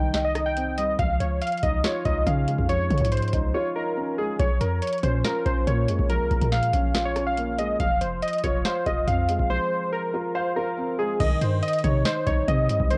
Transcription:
Already playing: 808-style bass C2, felt piano D#3 G3 C4 D#4 D#5, synth keys G5
0.14 felt piano D#5, snare, closed hi-hat
0.24 synth keys D#5
0.35 felt piano D#4, cross-stick, closed hi-hat
0.46 synth keys G5
0.56 felt piano C4, closed hi-hat
0.78 felt piano G3, synth keys D#5, closed hi-hat
0.99 808-style bass C#2, felt piano F3, synth keys F5, kick, closed hi-hat
1.20 808-style bass C#2, synth keys C#5, closed hi-hat
1.41 synth keys F5, closed hi-hat
1.47 closed hi-hat
1.52 closed hi-hat
1.57 closed hi-hat
1.63 808-style bass C#2, felt piano D#4, synth keys D#5, kick, closed hi-hat
1.84 felt piano F4, synth keys C#5, snare, closed hi-hat
2.05 808-style bass C#2, felt piano D#4, synth keys D#5, kick, closed hi-hat
2.27 808-style bass C#3, felt piano C#4, synth keys F5, kick, closed hi-hat
2.48 felt piano G#3, closed hi-hat
2.59 808-style bass F2, kick
2.69 felt piano F3, synth keys C#5, closed hi-hat
2.90 808-style bass C#3, kick, closed hi-hat
2.98 808-style bass G#2, kick, closed hi-hat
3.05 closed hi-hat
3.12 synth keys C5, closed hi-hat
3.17 closed hi-hat
3.22 closed hi-hat
3.28 closed hi-hat
3.33 808-style bass C#2, felt piano D#4, kick, closed hi-hat
3.54 felt piano F4, synth keys C#5
3.76 felt piano D#4, synth keys A#4
3.97 felt piano C#4
4.18 felt piano G#3, synth keys G#4
4.39 808-style bass A#1, felt piano F3, synth keys C#5, kick, closed hi-hat
4.61 808-style bass F2, synth keys A#4, closed hi-hat
4.82 synth keys C#5, closed hi-hat
4.87 closed hi-hat
4.93 closed hi-hat
4.98 closed hi-hat
5.03 808-style bass A#2, felt piano C#4, synth keys C5, kick, closed hi-hat
5.24 felt piano F4, synth keys A#4, snare, closed hi-hat
5.46 808-style bass A#1, felt piano C#4, synth keys C5, kick, closed hi-hat
5.67 808-style bass A#2, felt piano A#3, synth keys C#5, kick, closed hi-hat
5.88 808-style bass F2, felt piano G#3, closed hi-hat
5.99 808-style bass A#1, kick
6.10 felt piano F3, synth keys A#4, closed hi-hat
6.20 808-style bass C2
6.31 808-style bass A#1, kick, closed hi-hat
6.41 808-style bass A#2, kick, closed hi-hat
6.52 synth keys F5, snare, closed hi-hat
6.63 closed hi-hat
6.73 808-style bass A#1, felt piano C#4, kick, closed hi-hat
6.95 felt piano F4, snare, closed hi-hat
7.05 synth keys C#5
7.16 felt piano C#4, cross-stick, closed hi-hat
7.27 synth keys F5
7.37 felt piano A#3, closed hi-hat
7.59 felt piano G#3, synth keys D#5, closed hi-hat
7.80 808-style bass F1, felt piano F3, synth keys F5, kick, closed hi-hat
8.01 808-style bass F1, synth keys C5, closed hi-hat
8.22 synth keys D#5, closed hi-hat
8.28 closed hi-hat
8.33 closed hi-hat
8.38 closed hi-hat
8.44 808-style bass F1, felt piano F4, synth keys C#5, kick, closed hi-hat
8.65 synth keys C5, felt piano F5, snare, closed hi-hat
8.86 808-style bass F1, felt piano F4, synth keys D#5, kick, closed hi-hat
9.07 808-style bass F2, felt piano C4, synth keys F5, kick, closed hi-hat
9.29 felt piano G#3, closed hi-hat
9.39 808-style bass G#1, kick
9.50 felt piano F3, synth keys C5
9.92 synth keys A#4
10.14 felt piano F4
10.35 synth keys C5, felt piano F5
10.56 felt piano F4, synth keys A#4
10.78 felt piano C4
10.99 felt piano G#3, synth keys G#4
11.20 808-style bass C2, felt piano D#3, synth keys D#5, kick, closed hi-hat, crash
11.41 808-style bass G2, synth keys C5, closed hi-hat
11.63 synth keys D#5, closed hi-hat
11.68 closed hi-hat
11.73 closed hi-hat
11.79 closed hi-hat
11.84 808-style bass C3, felt piano D#4, synth keys C#5, kick, closed hi-hat
12.05 synth keys C5, felt piano D#5, snare, closed hi-hat
12.26 808-style bass C2, felt piano D#4, synth keys C#5, kick, closed hi-hat
12.48 808-style bass C3, felt piano C4, synth keys D#5, kick, closed hi-hat
12.69 808-style bass G2, felt piano G3, closed hi-hat
12.80 808-style bass C2, kick
12.90 felt piano D#3, synth keys C5, closed hi-hat

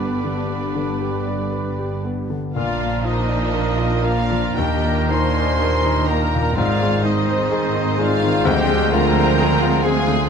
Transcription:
Already playing: double bass section G1, grand piano G2 G4 B4 D5, cello section G2, trombone section D3 G3, viola section G3 B3, clarinet D4, violin section D4 D5, french horn section D4 G4, flute section B4, trumpet B4, oboe D5
0.00 grand piano B3
0.24 grand piano D3
0.49 grand piano B3
0.75 grand piano D3
1.01 grand piano G4
1.26 grand piano D5
1.53 grand piano B4
1.79 grand piano G4
2.05 grand piano B3
2.30 grand piano D3
2.53 double bass section A#1, trombone section A#2 A#3, cello section A#2, grand piano A#2, viola section F3 D4, french horn section D4 F4, violin section F4 F5, clarinet F4, trumpet A#4, flute section D5, oboe F5
2.81 grand piano A#3
3.03 violin section D#4 D#5, clarinet D#4, grand piano F4, flute section C5, oboe D#5
3.28 grand piano D5
3.54 grand piano A#4
3.77 grand piano F4
4.03 grand piano A#3, violin section F4 F5, clarinet F4, flute section D5, oboe F5
4.31 grand piano F3
4.55 cello section D#2, double bass section D#2, grand piano D#2, viola section D#3 D4, french horn section D#4, violin section G4 G5, clarinet G4, flute section D#5, oboe G5
4.84 grand piano A#3
5.09 grand piano D#4, clarinet C5, violin section C5 C6, flute section G#5, oboe C6
5.37 grand piano D5
5.62 grand piano A#4
5.85 grand piano D#4
6.07 grand piano A#3, clarinet A#4, violin section A#4 A#5, flute section G5, oboe A#5
6.35 grand piano A#2
6.54 double bass section G#1, cello section G#2, grand piano G#2, viola section D#3 C4, trombone section D#3 G#3, french horn section C4, violin section F4 F5, clarinet F4, trumpet C5, flute section D5, oboe F5
6.82 grand piano G#3
7.03 clarinet D#4, violin section D#4 D#5, grand piano D#4, flute section C5, oboe D#5
7.29 grand piano C5
7.51 grand piano G#4
7.75 grand piano D#4
7.98 grand piano G#3, clarinet F4, violin section F4 F5, flute section D5, oboe F5
8.23 grand piano D#3
8.45 grand piano D2, double bass section D2, cello section D2, trombone section D3, viola section F3 C4, french horn section F4, violin section G4 G5, clarinet G4, flute section D#5, oboe G5
8.68 grand piano G#3
8.90 grand piano F4, violin section A#4 A#5, clarinet A#4, flute section G5, oboe A#5
9.17 grand piano C5
9.39 grand piano G#4
9.63 grand piano F4
9.81 violin section G#4 G#5, clarinet G#4, flute section F5, oboe G#5
9.85 grand piano G#3
10.08 grand piano D3

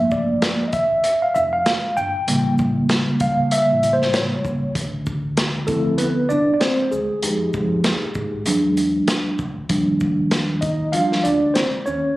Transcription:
Already playing: upright bass G1, tine electric piano F3 A3 A#3 E5
0.11 tine electric piano D5, kick, shaker
0.42 snare, closed hi-hat
0.68 tine electric piano D#5
0.73 tine electric piano E5, kick, closed hi-hat, shaker
1.04 closed hi-hat
1.22 tine electric piano F5
1.35 upright bass F1, tine electric piano E5, shaker
1.53 tine electric piano F5
1.66 snare, closed hi-hat
1.97 upright bass G1, tine electric piano G5, shaker
2.27 upright bass A1, tine electric piano C#3 G3 A#3, closed hi-hat
2.58 upright bass A1, kick, shaker
2.89 snare, closed hi-hat
3.09 muted upright bass stroke
3.20 upright bass C#2, tine electric piano F5, kick, closed hi-hat, shaker
3.51 tine electric piano E5, closed hi-hat
3.70 upright bass A1
3.83 upright bass A2, closed hi-hat, shaker
3.93 tine electric piano C5
4.02 snare
4.14 upright bass A1, tine electric piano C#5, snare, closed hi-hat
4.45 upright bass C#2, kick, shaker
4.75 upright bass D2, kick, closed hi-hat
5.06 kick, shaker
5.37 snare, closed hi-hat
5.67 tine electric piano F3 A3 C4 E4 A4, kick, closed hi-hat, shaker
5.98 tine electric piano B3 B4, closed hi-hat
6.29 upright bass C2, tine electric piano D4 D5, shaker
6.54 tine electric piano D5
6.60 tine electric piano C4 C5, snare, closed hi-hat
6.91 upright bass D2, tine electric piano G#3 G#4, shaker
7.23 upright bass F2, tine electric piano G#3 D#4 G4, closed hi-hat
7.53 upright bass F2, kick, shaker
7.84 snare, closed hi-hat
8.03 muted upright bass stroke
8.15 upright bass G#2, kick, shaker
8.46 upright bass E2, tine electric piano F#3 G#3 D4, closed hi-hat
8.77 closed hi-hat, shaker
9.08 snare, closed hi-hat
9.39 upright bass D2, kick, shaker
9.69 upright bass D#2, tine electric piano F3 G3 D4, kick, closed hi-hat
10.00 kick, shaker
10.31 snare, closed hi-hat
10.61 tine electric piano D#4 D#5, kick, closed hi-hat, shaker
10.92 tine electric piano F3 G3 D4 F4 F5, closed hi-hat
11.12 snare
11.24 upright bass D2, tine electric piano D4 D5, closed hi-hat, shaker
11.54 tine electric piano C4 C5, snare, closed hi-hat
11.86 upright bass D#2, tine electric piano C#4 C#5, shaker

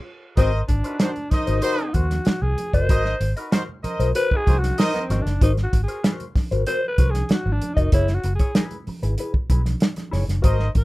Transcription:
0.36 fingered electric bass G#1, alto saxophone C4, clean electric guitar F#4 A#4 C5, horn section A#4 C5 D#5, kick, closed hi-hat, muted conga
0.68 fingered electric bass G#1, alto saxophone D4, muted clean electric guitar stroke, kick, closed hi-hat
0.84 horn section D#4 F#4 B4, clean electric guitar F#4 A#4 C5, closed hi-hat
0.99 horn section D#4 F#4 C5, clean electric guitar F#4 A#4 C5, snare, closed hi-hat, muted conga
1.16 closed hi-hat, muted conga, low conga
1.30 alto saxophone D#4, horn section A#4 C5 D#5, muted clean electric guitar stroke, muted fingered electric bass stroke, kick, snare, closed hi-hat, high conga
1.47 fingered electric bass G#1, clean electric guitar F#4 A#4 C5, closed hi-hat, low conga
1.62 horn section D#4 F#4 C5, clean electric guitar F#4 A#4 C5, closed hi-hat, muted conga
1.78 closed hi-hat, muted conga
1.94 fingered electric bass D#2, alto saxophone F#4, clean electric guitar F#4 A#4 C5, kick, closed hi-hat, high conga
2.10 muted clean electric guitar stroke, snare, closed hi-hat, high conga
2.25 muted clean electric guitar stroke, muted fingered electric bass stroke, snare, closed hi-hat
2.42 fingered electric bass C2, alto saxophone G#4, muted clean electric guitar stroke, high conga
2.58 closed hi-hat, high conga, low conga
2.73 fingered electric bass F#1, clean electric guitar F#4 A#4 D#5, alto saxophone C5, kick, closed hi-hat
2.89 fingered electric bass G#1, clean electric guitar F#4 A#4 D#5, horn section A#4 C5 D#5, kick, closed hi-hat
3.04 snare, muted conga
3.20 fingered electric bass G#1, muted clean electric guitar stroke, closed hi-hat
3.37 horn section D#4 F#4 B4, clean electric guitar F#4 A#4 D#5, closed hi-hat
3.51 horn section D#4 F#4 C5, clean electric guitar F#4 A#4 C5, snare, closed hi-hat
3.69 low conga
3.84 horn section A#4 C5 D#5, muted fingered electric bass stroke, muted clean electric guitar stroke, closed hi-hat, high conga
3.99 fingered electric bass B1, clean electric guitar F#4 A#4 C5, closed hi-hat, low conga
4.15 clean electric guitar F#4 A#4 C5, alto saxophone B4, closed hi-hat
4.31 horn section D#4 F#4 B4, kick, muted conga
4.36 alto saxophone G#4
4.47 fingered electric bass C2, horn section D#4 F#4 C5, clean electric guitar F#4 A#4 C5, kick, closed hi-hat, high conga
4.59 alto saxophone F#4
4.63 muted clean electric guitar stroke, snare, closed hi-hat, high conga
4.78 alto saxophone D#4, horn section A#4 C5 D#5, muted clean electric guitar stroke, snare, closed hi-hat
4.94 alto saxophone B3, muted clean electric guitar stroke, snare, closed hi-hat, muted conga, high conga
5.01 alto saxophone C4
5.10 fingered electric bass G#1, clean electric guitar F#4 A#4 D#5, snare, closed hi-hat, high conga, low conga
5.21 alto saxophone D4
5.26 fingered electric bass F#1, muted clean electric guitar stroke, snare, closed hi-hat
5.41 fingered electric bass G#1, alto saxophone D#4, clean electric guitar F#4 A#4 C5, kick, closed hi-hat, muted conga
5.57 snare, closed hi-hat
5.63 alto saxophone F#4
5.73 fingered electric bass G#1, muted clean electric guitar stroke, kick, closed hi-hat
5.84 alto saxophone G#4
5.88 clean electric guitar F#4 A#4 C5, closed hi-hat
6.03 clean electric guitar F#4 A#4 C5, snare, closed hi-hat, muted conga
6.20 closed hi-hat, muted conga, low conga
6.35 muted clean electric guitar stroke, muted fingered electric bass stroke, kick, snare, open hi-hat, high conga
6.51 fingered electric bass G#1, clean electric guitar F#4 A#4 C5, closed hi-hat, low conga
6.67 clean electric guitar F#4 A#4 C5, alto saxophone C5, closed hi-hat, muted conga
6.84 alto saxophone B4, muted clean electric guitar stroke, muted conga
6.98 fingered electric bass C2, clean electric guitar F#4 A#4 C5, kick, closed hi-hat, high conga
7.10 alto saxophone G#4, snare
7.14 muted clean electric guitar stroke, closed hi-hat, high conga
7.26 alto saxophone G#4, closed hi-hat
7.30 alto saxophone F#4, muted clean electric guitar stroke, muted fingered electric bass stroke, snare
7.46 fingered electric bass G#1, muted clean electric guitar stroke, muted conga, high conga
7.52 alto saxophone D4
7.62 closed hi-hat, high conga, low conga
7.74 fingered electric bass F1, alto saxophone D#4, clean electric guitar A#4 D#5, kick
7.78 clean electric guitar F#4, closed hi-hat
7.92 fingered electric bass F#1, clean electric guitar E4 G#4 C#5, alto saxophone E4, kick, closed hi-hat, muted conga
8.08 snare, closed hi-hat
8.14 alto saxophone F#4
8.24 fingered electric bass F#1, muted clean electric guitar stroke, closed hi-hat
8.35 alto saxophone G#4
8.39 clean electric guitar E4 G#4 C#5, kick, closed hi-hat
8.55 clean electric guitar E4 G#4 B4, snare, closed hi-hat, high conga
8.71 closed hi-hat, muted conga, low conga
8.87 muted fingered electric bass stroke, muted clean electric guitar stroke, open hi-hat, high conga
9.02 fingered electric bass G#1, clean electric guitar E4 G#4 B4, closed hi-hat, low conga
9.18 clean electric guitar E4 G#4 B4, closed hi-hat
9.34 kick, muted conga
9.50 fingered electric bass B1, clean electric guitar E4 G#4 B4, kick, closed hi-hat, high conga
9.66 muted clean electric guitar stroke, snare, closed hi-hat, high conga
9.80 muted clean electric guitar stroke, snare, closed hi-hat, muted conga
9.96 muted clean electric guitar stroke, snare, closed hi-hat, muted conga, high conga
10.11 fingered electric bass F#1, clean electric guitar E4 G#4 C#5, snare, open hi-hat, high conga, low conga
10.27 fingered electric bass F#1, muted clean electric guitar stroke, snare, closed hi-hat
10.42 fingered electric bass G#1, clean electric guitar F#4 A#4 C5, horn section A#4 C5 D#5, kick, closed hi-hat
10.59 snare, muted conga
10.75 fingered electric bass G#1, alto saxophone B4, muted clean electric guitar stroke, kick, closed hi-hat

